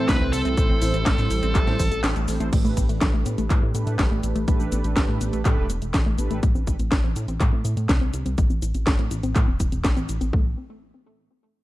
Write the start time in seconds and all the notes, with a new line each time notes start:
Already playing: A2 E3 A3 C4 E4 A4 C5
0.09 C2 A3 B4, kick, snare, clap, closed hi-hat, cabasa
0.21 C2 C4
0.33 C2 E4 A4, open hi-hat, cabasa
0.45 C2 C4, closed hi-hat, cabasa
0.57 A1 A2 G3 A3 C4 E4 A4 C5, kick, closed hi-hat, cabasa
0.70 A1 C4
0.82 A1 E4, open hi-hat, cabasa
0.94 A1 C4, closed hi-hat, cabasa
1.06 A1 A3, kick, snare, clap, closed hi-hat, cabasa
1.18 A2 C4, snare, closed hi-hat, cabasa
1.31 A1 E4, open hi-hat, cabasa
1.43 A1 C4, closed hi-hat, cabasa
1.55 A1 A2 A3 C4 E4 A4 C5, kick, clap, closed hi-hat, cabasa
1.67 A2 C4, snare, closed hi-hat
1.79 A1 C5, kick, open hi-hat, cabasa
1.91 A1 A4, closed hi-hat, cabasa
2.04 A1 A4, snare, clap, closed hi-hat, cabasa
2.16 A1 A3, closed hi-hat, cabasa
2.28 A1 A3 C4 E4 A4 C5, open hi-hat, cabasa
2.40 A1 A3, closed hi-hat, cabasa
2.53 A1 G3 A3 D4 G4 A4 B4, kick, closed hi-hat, crash, cabasa
2.65 A1 A3, cabasa
2.77 A1 B3, kick, closed hi-hat, cabasa
2.89 A1 A3, closed hi-hat, cabasa
3.01 A1 G3, kick, snare, clap, closed hi-hat, cabasa
3.14 A1 A3
3.26 A2 B3, closed hi-hat, cabasa
3.38 A1 A3, closed hi-hat, cabasa
3.50 A2 G3, kick, clap, closed hi-hat, cabasa
3.62 A2 A3
3.74 A2 A3 B3 D4 G4 A4 B4, closed hi-hat, cabasa
3.87 A2 A3, closed hi-hat, cabasa
3.99 A1 G3, kick, snare, clap, closed hi-hat, cabasa
4.11 A1 A3
4.23 A1 B3, closed hi-hat, cabasa
4.35 A1 A3, closed hi-hat, cabasa
4.48 A1 G3 A3 D4 G4 A4 B4, kick, closed hi-hat, cabasa
4.60 A1 A3, cabasa
4.72 A1 B3, closed hi-hat, cabasa
4.84 A1 A3, closed hi-hat, cabasa
4.97 A1 G3, kick, snare, clap, closed hi-hat, cabasa
5.08 A2 A3
5.21 A1 B3, closed hi-hat, cabasa
5.33 A1 A3, closed hi-hat, cabasa
5.45 A2 G3 A3 D4 G4 A4 B4, kick, clap, closed hi-hat, cabasa
5.57 E1 A3
5.70 E1 B3, closed hi-hat, cabasa
5.82 E1 A3, closed hi-hat, cabasa
5.94 A1 G3, kick, snare, clap, closed hi-hat, cabasa
6.06 A1 A3
6.18 A1 B3 D4 G4 A4 B4, closed hi-hat, cabasa
6.30 A1 A3, closed hi-hat, cabasa
6.43 A1 A3, kick, closed hi-hat, cabasa
6.55 A1 C4, cabasa
6.67 A1 E4, kick, closed hi-hat, cabasa
6.79 A1 C4, closed hi-hat, cabasa
6.92 A1 A3, kick, snare, clap, closed hi-hat, cabasa
7.04 A1 C4
7.16 A2 E4, closed hi-hat, cabasa
7.28 A1 C4, closed hi-hat, cabasa
7.40 A2 A3, kick, clap, closed hi-hat, cabasa
7.53 A2 C4
7.65 A2 E4, closed hi-hat, cabasa
7.77 A2 C4, closed hi-hat, cabasa
7.89 C2 A3, kick, snare, clap, closed hi-hat, cabasa
8.01 C2 C4
8.13 C2 E4, closed hi-hat, cabasa
8.26 C2 C4, closed hi-hat, cabasa
8.38 A1 A3, kick, closed hi-hat, cabasa
8.50 A1 C4, cabasa
8.62 A1 E4, closed hi-hat, cabasa
8.75 A1 C4, closed hi-hat, cabasa
8.87 A1 A3, kick, snare, clap, closed hi-hat, cabasa
8.99 A2 C4, closed hi-hat
9.11 A1 E4, closed hi-hat, cabasa
9.23 A1 C4, closed hi-hat, cabasa
9.36 A2 A3, kick, clap, closed hi-hat, cabasa
9.48 E1 C4
9.60 E1 E4, kick, closed hi-hat, cabasa
9.72 E1 C4, closed hi-hat, cabasa
9.84 A1 A3, kick, snare, clap, closed hi-hat, cabasa
9.97 A1 C4, closed hi-hat, cabasa
10.09 A1 E4, closed hi-hat, cabasa
10.21 A1 C4, closed hi-hat, cabasa
10.33 A1 A3, kick